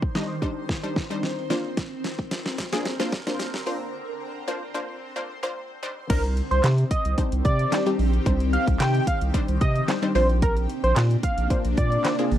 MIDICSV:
0, 0, Header, 1, 6, 480
1, 0, Start_track
1, 0, Key_signature, -3, "minor"
1, 0, Tempo, 540541
1, 1575, Time_signature, 4, 2, 24, 8
1, 10996, End_track
2, 0, Start_track
2, 0, Title_t, "Analog synth lead"
2, 0, Program_c, 0, 81
2, 5414, Note_on_c, 0, 70, 98
2, 5522, Note_off_c, 0, 70, 0
2, 5781, Note_on_c, 0, 72, 84
2, 5877, Note_off_c, 0, 72, 0
2, 6134, Note_on_c, 0, 75, 78
2, 6338, Note_off_c, 0, 75, 0
2, 6613, Note_on_c, 0, 74, 104
2, 6959, Note_off_c, 0, 74, 0
2, 7575, Note_on_c, 0, 77, 76
2, 7683, Note_off_c, 0, 77, 0
2, 7813, Note_on_c, 0, 79, 83
2, 8017, Note_off_c, 0, 79, 0
2, 8056, Note_on_c, 0, 77, 87
2, 8163, Note_off_c, 0, 77, 0
2, 8534, Note_on_c, 0, 75, 99
2, 8737, Note_off_c, 0, 75, 0
2, 9017, Note_on_c, 0, 72, 77
2, 9124, Note_off_c, 0, 72, 0
2, 9256, Note_on_c, 0, 70, 103
2, 9363, Note_off_c, 0, 70, 0
2, 9623, Note_on_c, 0, 72, 89
2, 9718, Note_off_c, 0, 72, 0
2, 9978, Note_on_c, 0, 77, 82
2, 10180, Note_off_c, 0, 77, 0
2, 10455, Note_on_c, 0, 74, 96
2, 10800, Note_off_c, 0, 74, 0
2, 10996, End_track
3, 0, Start_track
3, 0, Title_t, "Synth pluck"
3, 0, Program_c, 1, 84
3, 132, Note_on_c, 1, 55, 93
3, 133, Note_on_c, 1, 62, 89
3, 134, Note_on_c, 1, 63, 85
3, 137, Note_on_c, 1, 75, 106
3, 268, Note_off_c, 1, 55, 0
3, 269, Note_off_c, 1, 62, 0
3, 269, Note_off_c, 1, 63, 0
3, 271, Note_off_c, 1, 75, 0
3, 371, Note_on_c, 1, 55, 94
3, 374, Note_on_c, 1, 62, 90
3, 375, Note_on_c, 1, 63, 88
3, 377, Note_on_c, 1, 72, 101
3, 568, Note_off_c, 1, 55, 0
3, 569, Note_off_c, 1, 62, 0
3, 570, Note_off_c, 1, 63, 0
3, 571, Note_off_c, 1, 72, 0
3, 740, Note_on_c, 1, 55, 92
3, 741, Note_on_c, 1, 62, 83
3, 742, Note_on_c, 1, 63, 82
3, 743, Note_on_c, 1, 72, 98
3, 862, Note_off_c, 1, 55, 0
3, 863, Note_off_c, 1, 62, 0
3, 863, Note_off_c, 1, 63, 0
3, 864, Note_off_c, 1, 72, 0
3, 978, Note_on_c, 1, 55, 96
3, 980, Note_on_c, 1, 62, 89
3, 981, Note_on_c, 1, 63, 91
3, 983, Note_on_c, 1, 72, 110
3, 1296, Note_off_c, 1, 55, 0
3, 1296, Note_off_c, 1, 62, 0
3, 1297, Note_off_c, 1, 63, 0
3, 1298, Note_off_c, 1, 72, 0
3, 1332, Note_on_c, 1, 58, 93
3, 1334, Note_on_c, 1, 62, 86
3, 1335, Note_on_c, 1, 65, 88
3, 1336, Note_on_c, 1, 72, 109
3, 2104, Note_off_c, 1, 58, 0
3, 2106, Note_off_c, 1, 62, 0
3, 2106, Note_off_c, 1, 65, 0
3, 2107, Note_off_c, 1, 72, 0
3, 2419, Note_on_c, 1, 58, 112
3, 2420, Note_on_c, 1, 62, 102
3, 2421, Note_on_c, 1, 65, 97
3, 2423, Note_on_c, 1, 68, 125
3, 2542, Note_off_c, 1, 58, 0
3, 2542, Note_off_c, 1, 62, 0
3, 2543, Note_off_c, 1, 65, 0
3, 2544, Note_off_c, 1, 68, 0
3, 2660, Note_on_c, 1, 58, 104
3, 2660, Note_on_c, 1, 62, 96
3, 2663, Note_on_c, 1, 65, 93
3, 2664, Note_on_c, 1, 72, 110
3, 2782, Note_off_c, 1, 58, 0
3, 2783, Note_off_c, 1, 62, 0
3, 2784, Note_off_c, 1, 65, 0
3, 2784, Note_off_c, 1, 72, 0
3, 2901, Note_on_c, 1, 58, 104
3, 2902, Note_on_c, 1, 62, 92
3, 2904, Note_on_c, 1, 65, 91
3, 2905, Note_on_c, 1, 72, 113
3, 3091, Note_off_c, 1, 58, 0
3, 3091, Note_off_c, 1, 62, 0
3, 3092, Note_off_c, 1, 65, 0
3, 3093, Note_off_c, 1, 72, 0
3, 3253, Note_on_c, 1, 58, 91
3, 3255, Note_on_c, 1, 62, 82
3, 3256, Note_on_c, 1, 65, 82
3, 3257, Note_on_c, 1, 72, 96
3, 3644, Note_off_c, 1, 58, 0
3, 3645, Note_off_c, 1, 62, 0
3, 3645, Note_off_c, 1, 65, 0
3, 3646, Note_off_c, 1, 72, 0
3, 3974, Note_on_c, 1, 58, 99
3, 3975, Note_on_c, 1, 62, 89
3, 3977, Note_on_c, 1, 65, 94
3, 3978, Note_on_c, 1, 72, 106
3, 4109, Note_off_c, 1, 58, 0
3, 4110, Note_off_c, 1, 62, 0
3, 4111, Note_off_c, 1, 65, 0
3, 4111, Note_off_c, 1, 72, 0
3, 4212, Note_on_c, 1, 58, 97
3, 4213, Note_on_c, 1, 62, 90
3, 4215, Note_on_c, 1, 65, 87
3, 4217, Note_on_c, 1, 72, 106
3, 4408, Note_off_c, 1, 58, 0
3, 4409, Note_off_c, 1, 62, 0
3, 4410, Note_off_c, 1, 65, 0
3, 4411, Note_off_c, 1, 72, 0
3, 4581, Note_on_c, 1, 58, 95
3, 4582, Note_on_c, 1, 62, 85
3, 4583, Note_on_c, 1, 65, 85
3, 4585, Note_on_c, 1, 72, 97
3, 4703, Note_off_c, 1, 58, 0
3, 4703, Note_off_c, 1, 62, 0
3, 4704, Note_off_c, 1, 65, 0
3, 4705, Note_off_c, 1, 72, 0
3, 4820, Note_on_c, 1, 58, 99
3, 4822, Note_on_c, 1, 62, 89
3, 4823, Note_on_c, 1, 65, 96
3, 4825, Note_on_c, 1, 72, 114
3, 5136, Note_off_c, 1, 58, 0
3, 5137, Note_off_c, 1, 62, 0
3, 5138, Note_off_c, 1, 65, 0
3, 5139, Note_off_c, 1, 72, 0
3, 5173, Note_on_c, 1, 55, 101
3, 5174, Note_on_c, 1, 62, 94
3, 5176, Note_on_c, 1, 63, 91
3, 5177, Note_on_c, 1, 72, 106
3, 5369, Note_off_c, 1, 55, 0
3, 5370, Note_off_c, 1, 62, 0
3, 5370, Note_off_c, 1, 63, 0
3, 5371, Note_off_c, 1, 72, 0
3, 5412, Note_on_c, 1, 55, 76
3, 5414, Note_on_c, 1, 60, 70
3, 5415, Note_on_c, 1, 62, 72
3, 5416, Note_on_c, 1, 63, 72
3, 5417, Note_on_c, 1, 72, 85
3, 5928, Note_off_c, 1, 55, 0
3, 5928, Note_off_c, 1, 60, 0
3, 5929, Note_off_c, 1, 62, 0
3, 5930, Note_off_c, 1, 63, 0
3, 5930, Note_off_c, 1, 72, 0
3, 6373, Note_on_c, 1, 55, 82
3, 6374, Note_on_c, 1, 60, 73
3, 6376, Note_on_c, 1, 62, 75
3, 6377, Note_on_c, 1, 63, 73
3, 6378, Note_on_c, 1, 72, 95
3, 6631, Note_off_c, 1, 55, 0
3, 6632, Note_off_c, 1, 60, 0
3, 6632, Note_off_c, 1, 62, 0
3, 6633, Note_off_c, 1, 63, 0
3, 6633, Note_off_c, 1, 72, 0
3, 6854, Note_on_c, 1, 55, 77
3, 6855, Note_on_c, 1, 60, 71
3, 6856, Note_on_c, 1, 62, 70
3, 6857, Note_on_c, 1, 63, 70
3, 6858, Note_on_c, 1, 67, 86
3, 6923, Note_off_c, 1, 55, 0
3, 6923, Note_off_c, 1, 60, 0
3, 6923, Note_off_c, 1, 62, 0
3, 6924, Note_off_c, 1, 63, 0
3, 6924, Note_off_c, 1, 67, 0
3, 6981, Note_on_c, 1, 55, 87
3, 6982, Note_on_c, 1, 60, 81
3, 6984, Note_on_c, 1, 62, 79
3, 6985, Note_on_c, 1, 63, 82
3, 6986, Note_on_c, 1, 67, 102
3, 7171, Note_off_c, 1, 55, 0
3, 7171, Note_off_c, 1, 60, 0
3, 7172, Note_off_c, 1, 62, 0
3, 7173, Note_off_c, 1, 63, 0
3, 7173, Note_off_c, 1, 67, 0
3, 7335, Note_on_c, 1, 55, 96
3, 7337, Note_on_c, 1, 60, 86
3, 7337, Note_on_c, 1, 62, 81
3, 7338, Note_on_c, 1, 63, 81
3, 7339, Note_on_c, 1, 72, 99
3, 7849, Note_off_c, 1, 55, 0
3, 7850, Note_off_c, 1, 60, 0
3, 7850, Note_off_c, 1, 62, 0
3, 7851, Note_off_c, 1, 63, 0
3, 7851, Note_off_c, 1, 72, 0
3, 8293, Note_on_c, 1, 55, 101
3, 8294, Note_on_c, 1, 60, 89
3, 8295, Note_on_c, 1, 62, 94
3, 8296, Note_on_c, 1, 63, 88
3, 8297, Note_on_c, 1, 72, 108
3, 8551, Note_off_c, 1, 55, 0
3, 8552, Note_off_c, 1, 60, 0
3, 8552, Note_off_c, 1, 62, 0
3, 8553, Note_off_c, 1, 63, 0
3, 8553, Note_off_c, 1, 72, 0
3, 8773, Note_on_c, 1, 55, 79
3, 8774, Note_on_c, 1, 60, 71
3, 8775, Note_on_c, 1, 62, 72
3, 8776, Note_on_c, 1, 63, 70
3, 8777, Note_on_c, 1, 72, 87
3, 8842, Note_off_c, 1, 55, 0
3, 8842, Note_off_c, 1, 60, 0
3, 8843, Note_off_c, 1, 62, 0
3, 8843, Note_off_c, 1, 63, 0
3, 8844, Note_off_c, 1, 72, 0
3, 8901, Note_on_c, 1, 55, 86
3, 8901, Note_on_c, 1, 60, 81
3, 8902, Note_on_c, 1, 62, 80
3, 8903, Note_on_c, 1, 63, 81
3, 8905, Note_on_c, 1, 72, 93
3, 9003, Note_off_c, 1, 60, 0
3, 9004, Note_off_c, 1, 62, 0
3, 9007, Note_off_c, 1, 72, 0
3, 9013, Note_on_c, 1, 58, 86
3, 9013, Note_on_c, 1, 60, 77
3, 9014, Note_off_c, 1, 55, 0
3, 9015, Note_off_c, 1, 63, 0
3, 9015, Note_on_c, 1, 62, 78
3, 9015, Note_on_c, 1, 65, 81
3, 9017, Note_on_c, 1, 72, 93
3, 9785, Note_off_c, 1, 58, 0
3, 9785, Note_off_c, 1, 60, 0
3, 9786, Note_off_c, 1, 62, 0
3, 9786, Note_off_c, 1, 65, 0
3, 9787, Note_off_c, 1, 72, 0
3, 10213, Note_on_c, 1, 58, 82
3, 10215, Note_on_c, 1, 60, 74
3, 10215, Note_on_c, 1, 62, 77
3, 10216, Note_on_c, 1, 65, 75
3, 10217, Note_on_c, 1, 72, 92
3, 10471, Note_off_c, 1, 58, 0
3, 10472, Note_off_c, 1, 60, 0
3, 10472, Note_off_c, 1, 62, 0
3, 10473, Note_off_c, 1, 65, 0
3, 10473, Note_off_c, 1, 72, 0
3, 10693, Note_on_c, 1, 58, 79
3, 10695, Note_on_c, 1, 60, 74
3, 10696, Note_on_c, 1, 62, 71
3, 10697, Note_on_c, 1, 65, 69
3, 10698, Note_on_c, 1, 72, 84
3, 10762, Note_off_c, 1, 58, 0
3, 10763, Note_off_c, 1, 60, 0
3, 10763, Note_off_c, 1, 62, 0
3, 10764, Note_off_c, 1, 65, 0
3, 10764, Note_off_c, 1, 72, 0
3, 10822, Note_on_c, 1, 58, 91
3, 10823, Note_on_c, 1, 60, 84
3, 10823, Note_on_c, 1, 62, 82
3, 10825, Note_on_c, 1, 65, 81
3, 10826, Note_on_c, 1, 68, 95
3, 10996, Note_off_c, 1, 58, 0
3, 10996, Note_off_c, 1, 60, 0
3, 10996, Note_off_c, 1, 62, 0
3, 10996, Note_off_c, 1, 65, 0
3, 10996, Note_off_c, 1, 68, 0
3, 10996, End_track
4, 0, Start_track
4, 0, Title_t, "Ambient pad"
4, 0, Program_c, 2, 92
4, 0, Note_on_c, 2, 51, 77
4, 0, Note_on_c, 2, 60, 71
4, 0, Note_on_c, 2, 72, 87
4, 1299, Note_off_c, 2, 51, 0
4, 1299, Note_off_c, 2, 72, 0
4, 1336, Note_on_c, 2, 50, 74
4, 1336, Note_on_c, 2, 70, 85
4, 3236, Note_off_c, 2, 70, 0
4, 3255, Note_on_c, 2, 72, 83
4, 5138, Note_off_c, 2, 60, 0
4, 5140, Note_off_c, 2, 50, 0
4, 5393, Note_off_c, 2, 72, 0
4, 5416, Note_on_c, 2, 51, 82
4, 5417, Note_on_c, 2, 60, 77
4, 5417, Note_on_c, 2, 67, 86
4, 8980, Note_off_c, 2, 51, 0
4, 8980, Note_off_c, 2, 60, 0
4, 8981, Note_off_c, 2, 67, 0
4, 9014, Note_on_c, 2, 48, 77
4, 9014, Note_on_c, 2, 58, 72
4, 9015, Note_on_c, 2, 62, 81
4, 10996, Note_off_c, 2, 48, 0
4, 10996, Note_off_c, 2, 58, 0
4, 10996, Note_off_c, 2, 62, 0
4, 10996, End_track
5, 0, Start_track
5, 0, Title_t, "Sub bass"
5, 0, Program_c, 3, 38
5, 5416, Note_on_c, 3, 36, 116
5, 5693, Note_off_c, 3, 36, 0
5, 5783, Note_on_c, 3, 36, 86
5, 5868, Note_off_c, 3, 36, 0
5, 5896, Note_on_c, 3, 48, 109
5, 6077, Note_off_c, 3, 48, 0
5, 6262, Note_on_c, 3, 36, 95
5, 6347, Note_off_c, 3, 36, 0
5, 6502, Note_on_c, 3, 36, 110
5, 6587, Note_off_c, 3, 36, 0
5, 6617, Note_on_c, 3, 48, 109
5, 6797, Note_off_c, 3, 48, 0
5, 7095, Note_on_c, 3, 34, 90
5, 7276, Note_off_c, 3, 34, 0
5, 7335, Note_on_c, 3, 36, 105
5, 7613, Note_off_c, 3, 36, 0
5, 7703, Note_on_c, 3, 36, 89
5, 7788, Note_off_c, 3, 36, 0
5, 7816, Note_on_c, 3, 48, 105
5, 7997, Note_off_c, 3, 48, 0
5, 8183, Note_on_c, 3, 36, 94
5, 8268, Note_off_c, 3, 36, 0
5, 8422, Note_on_c, 3, 36, 103
5, 8507, Note_off_c, 3, 36, 0
5, 8537, Note_on_c, 3, 48, 100
5, 8717, Note_off_c, 3, 48, 0
5, 9015, Note_on_c, 3, 34, 99
5, 9474, Note_off_c, 3, 34, 0
5, 9622, Note_on_c, 3, 34, 96
5, 9707, Note_off_c, 3, 34, 0
5, 9735, Note_on_c, 3, 46, 104
5, 9916, Note_off_c, 3, 46, 0
5, 10102, Note_on_c, 3, 34, 97
5, 10187, Note_off_c, 3, 34, 0
5, 10343, Note_on_c, 3, 34, 103
5, 10428, Note_off_c, 3, 34, 0
5, 10457, Note_on_c, 3, 46, 99
5, 10637, Note_off_c, 3, 46, 0
5, 10935, Note_on_c, 3, 32, 95
5, 10996, Note_off_c, 3, 32, 0
5, 10996, End_track
6, 0, Start_track
6, 0, Title_t, "Drums"
6, 21, Note_on_c, 9, 36, 89
6, 109, Note_off_c, 9, 36, 0
6, 134, Note_on_c, 9, 38, 81
6, 223, Note_off_c, 9, 38, 0
6, 373, Note_on_c, 9, 36, 76
6, 462, Note_off_c, 9, 36, 0
6, 613, Note_on_c, 9, 36, 83
6, 614, Note_on_c, 9, 38, 84
6, 702, Note_off_c, 9, 36, 0
6, 703, Note_off_c, 9, 38, 0
6, 854, Note_on_c, 9, 38, 84
6, 855, Note_on_c, 9, 36, 97
6, 943, Note_off_c, 9, 38, 0
6, 944, Note_off_c, 9, 36, 0
6, 1093, Note_on_c, 9, 38, 90
6, 1182, Note_off_c, 9, 38, 0
6, 1333, Note_on_c, 9, 38, 92
6, 1422, Note_off_c, 9, 38, 0
6, 1574, Note_on_c, 9, 36, 116
6, 1574, Note_on_c, 9, 38, 92
6, 1574, Note_on_c, 9, 42, 83
6, 1663, Note_off_c, 9, 36, 0
6, 1663, Note_off_c, 9, 38, 0
6, 1663, Note_off_c, 9, 42, 0
6, 1815, Note_on_c, 9, 38, 98
6, 1815, Note_on_c, 9, 42, 70
6, 1903, Note_off_c, 9, 38, 0
6, 1904, Note_off_c, 9, 42, 0
6, 1941, Note_on_c, 9, 36, 89
6, 2030, Note_off_c, 9, 36, 0
6, 2053, Note_on_c, 9, 42, 91
6, 2054, Note_on_c, 9, 38, 102
6, 2142, Note_off_c, 9, 42, 0
6, 2143, Note_off_c, 9, 38, 0
6, 2182, Note_on_c, 9, 38, 104
6, 2271, Note_off_c, 9, 38, 0
6, 2294, Note_on_c, 9, 36, 81
6, 2294, Note_on_c, 9, 38, 105
6, 2294, Note_on_c, 9, 42, 94
6, 2382, Note_off_c, 9, 36, 0
6, 2383, Note_off_c, 9, 38, 0
6, 2383, Note_off_c, 9, 42, 0
6, 2421, Note_on_c, 9, 38, 105
6, 2510, Note_off_c, 9, 38, 0
6, 2534, Note_on_c, 9, 42, 73
6, 2535, Note_on_c, 9, 38, 104
6, 2623, Note_off_c, 9, 42, 0
6, 2624, Note_off_c, 9, 38, 0
6, 2661, Note_on_c, 9, 42, 57
6, 2662, Note_on_c, 9, 38, 109
6, 2749, Note_off_c, 9, 42, 0
6, 2750, Note_off_c, 9, 38, 0
6, 2773, Note_on_c, 9, 42, 67
6, 2774, Note_on_c, 9, 38, 107
6, 2775, Note_on_c, 9, 36, 98
6, 2862, Note_off_c, 9, 42, 0
6, 2863, Note_off_c, 9, 38, 0
6, 2864, Note_off_c, 9, 36, 0
6, 2902, Note_on_c, 9, 38, 110
6, 2903, Note_on_c, 9, 42, 49
6, 2991, Note_off_c, 9, 38, 0
6, 2991, Note_off_c, 9, 42, 0
6, 3015, Note_on_c, 9, 38, 117
6, 3018, Note_on_c, 9, 42, 99
6, 3104, Note_off_c, 9, 38, 0
6, 3107, Note_off_c, 9, 42, 0
6, 3143, Note_on_c, 9, 38, 111
6, 3232, Note_off_c, 9, 38, 0
6, 3256, Note_on_c, 9, 46, 74
6, 3345, Note_off_c, 9, 46, 0
6, 5416, Note_on_c, 9, 36, 120
6, 5416, Note_on_c, 9, 42, 89
6, 5416, Note_on_c, 9, 49, 102
6, 5505, Note_off_c, 9, 36, 0
6, 5505, Note_off_c, 9, 42, 0
6, 5505, Note_off_c, 9, 49, 0
6, 5542, Note_on_c, 9, 42, 49
6, 5631, Note_off_c, 9, 42, 0
6, 5657, Note_on_c, 9, 42, 75
6, 5745, Note_off_c, 9, 42, 0
6, 5784, Note_on_c, 9, 42, 57
6, 5873, Note_off_c, 9, 42, 0
6, 5894, Note_on_c, 9, 38, 96
6, 5894, Note_on_c, 9, 39, 120
6, 5894, Note_on_c, 9, 42, 93
6, 5983, Note_off_c, 9, 38, 0
6, 5983, Note_off_c, 9, 39, 0
6, 5983, Note_off_c, 9, 42, 0
6, 6023, Note_on_c, 9, 42, 62
6, 6112, Note_off_c, 9, 42, 0
6, 6134, Note_on_c, 9, 36, 86
6, 6134, Note_on_c, 9, 42, 98
6, 6223, Note_off_c, 9, 36, 0
6, 6223, Note_off_c, 9, 42, 0
6, 6261, Note_on_c, 9, 42, 61
6, 6350, Note_off_c, 9, 42, 0
6, 6374, Note_on_c, 9, 42, 81
6, 6375, Note_on_c, 9, 36, 87
6, 6463, Note_off_c, 9, 36, 0
6, 6463, Note_off_c, 9, 42, 0
6, 6502, Note_on_c, 9, 42, 58
6, 6590, Note_off_c, 9, 42, 0
6, 6614, Note_on_c, 9, 42, 71
6, 6617, Note_on_c, 9, 36, 102
6, 6703, Note_off_c, 9, 42, 0
6, 6705, Note_off_c, 9, 36, 0
6, 6743, Note_on_c, 9, 42, 46
6, 6831, Note_off_c, 9, 42, 0
6, 6856, Note_on_c, 9, 38, 96
6, 6856, Note_on_c, 9, 39, 114
6, 6858, Note_on_c, 9, 42, 102
6, 6945, Note_off_c, 9, 38, 0
6, 6945, Note_off_c, 9, 39, 0
6, 6947, Note_off_c, 9, 42, 0
6, 6984, Note_on_c, 9, 42, 54
6, 7073, Note_off_c, 9, 42, 0
6, 7097, Note_on_c, 9, 46, 72
6, 7186, Note_off_c, 9, 46, 0
6, 7224, Note_on_c, 9, 42, 57
6, 7312, Note_off_c, 9, 42, 0
6, 7336, Note_on_c, 9, 36, 120
6, 7337, Note_on_c, 9, 42, 85
6, 7425, Note_off_c, 9, 36, 0
6, 7425, Note_off_c, 9, 42, 0
6, 7463, Note_on_c, 9, 42, 49
6, 7551, Note_off_c, 9, 42, 0
6, 7578, Note_on_c, 9, 42, 77
6, 7666, Note_off_c, 9, 42, 0
6, 7703, Note_on_c, 9, 36, 100
6, 7704, Note_on_c, 9, 42, 56
6, 7792, Note_off_c, 9, 36, 0
6, 7793, Note_off_c, 9, 42, 0
6, 7815, Note_on_c, 9, 38, 100
6, 7815, Note_on_c, 9, 39, 120
6, 7815, Note_on_c, 9, 42, 93
6, 7903, Note_off_c, 9, 38, 0
6, 7903, Note_off_c, 9, 39, 0
6, 7904, Note_off_c, 9, 42, 0
6, 7944, Note_on_c, 9, 42, 60
6, 8033, Note_off_c, 9, 42, 0
6, 8055, Note_on_c, 9, 36, 83
6, 8056, Note_on_c, 9, 42, 97
6, 8144, Note_off_c, 9, 36, 0
6, 8145, Note_off_c, 9, 42, 0
6, 8182, Note_on_c, 9, 42, 59
6, 8271, Note_off_c, 9, 42, 0
6, 8295, Note_on_c, 9, 36, 84
6, 8296, Note_on_c, 9, 42, 80
6, 8384, Note_off_c, 9, 36, 0
6, 8385, Note_off_c, 9, 42, 0
6, 8422, Note_on_c, 9, 42, 58
6, 8511, Note_off_c, 9, 42, 0
6, 8534, Note_on_c, 9, 42, 73
6, 8537, Note_on_c, 9, 36, 101
6, 8623, Note_off_c, 9, 42, 0
6, 8625, Note_off_c, 9, 36, 0
6, 8663, Note_on_c, 9, 42, 47
6, 8752, Note_off_c, 9, 42, 0
6, 8776, Note_on_c, 9, 38, 94
6, 8776, Note_on_c, 9, 39, 125
6, 8778, Note_on_c, 9, 42, 99
6, 8865, Note_off_c, 9, 38, 0
6, 8865, Note_off_c, 9, 39, 0
6, 8867, Note_off_c, 9, 42, 0
6, 8904, Note_on_c, 9, 42, 56
6, 8992, Note_off_c, 9, 42, 0
6, 9016, Note_on_c, 9, 46, 75
6, 9105, Note_off_c, 9, 46, 0
6, 9143, Note_on_c, 9, 42, 57
6, 9231, Note_off_c, 9, 42, 0
6, 9256, Note_on_c, 9, 36, 126
6, 9256, Note_on_c, 9, 42, 86
6, 9344, Note_off_c, 9, 36, 0
6, 9345, Note_off_c, 9, 42, 0
6, 9383, Note_on_c, 9, 42, 50
6, 9472, Note_off_c, 9, 42, 0
6, 9497, Note_on_c, 9, 42, 76
6, 9586, Note_off_c, 9, 42, 0
6, 9625, Note_on_c, 9, 42, 56
6, 9714, Note_off_c, 9, 42, 0
6, 9735, Note_on_c, 9, 38, 96
6, 9735, Note_on_c, 9, 39, 127
6, 9736, Note_on_c, 9, 42, 92
6, 9824, Note_off_c, 9, 38, 0
6, 9824, Note_off_c, 9, 39, 0
6, 9824, Note_off_c, 9, 42, 0
6, 9864, Note_on_c, 9, 42, 63
6, 9953, Note_off_c, 9, 42, 0
6, 9974, Note_on_c, 9, 36, 85
6, 9975, Note_on_c, 9, 42, 99
6, 10063, Note_off_c, 9, 36, 0
6, 10064, Note_off_c, 9, 42, 0
6, 10103, Note_on_c, 9, 42, 60
6, 10191, Note_off_c, 9, 42, 0
6, 10215, Note_on_c, 9, 36, 89
6, 10215, Note_on_c, 9, 42, 77
6, 10303, Note_off_c, 9, 36, 0
6, 10304, Note_off_c, 9, 42, 0
6, 10342, Note_on_c, 9, 42, 59
6, 10431, Note_off_c, 9, 42, 0
6, 10455, Note_on_c, 9, 42, 70
6, 10457, Note_on_c, 9, 36, 103
6, 10544, Note_off_c, 9, 42, 0
6, 10546, Note_off_c, 9, 36, 0
6, 10584, Note_on_c, 9, 42, 47
6, 10673, Note_off_c, 9, 42, 0
6, 10696, Note_on_c, 9, 38, 94
6, 10696, Note_on_c, 9, 39, 121
6, 10698, Note_on_c, 9, 42, 101
6, 10785, Note_off_c, 9, 38, 0
6, 10785, Note_off_c, 9, 39, 0
6, 10787, Note_off_c, 9, 42, 0
6, 10824, Note_on_c, 9, 42, 55
6, 10913, Note_off_c, 9, 42, 0
6, 10936, Note_on_c, 9, 46, 74
6, 10996, Note_off_c, 9, 46, 0
6, 10996, End_track
0, 0, End_of_file